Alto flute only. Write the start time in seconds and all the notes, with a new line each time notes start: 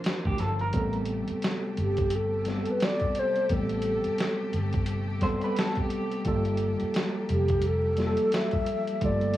1.81 G4
2.15 A4
2.71 B4
2.84 D5
3.19 C5
3.53 A4
7.32 G4
7.67 A4
8.35 E5
9.05 D5